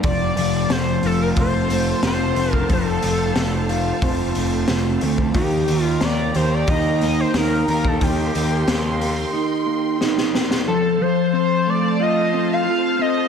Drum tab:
HH |o-o-o-o-o-o-o-o-|o-o-o-o-o-o-o-o-|o-o-o-o-o-o-o-o-|o-o-o-o---------|
SD |----o-------o---|----o-------o---|----o-------o---|----o-------oooo|
BD |o-------o------o|o-------o------o|o-------o------o|o---------------|

HH |----------------|
SD |----------------|
BD |----------------|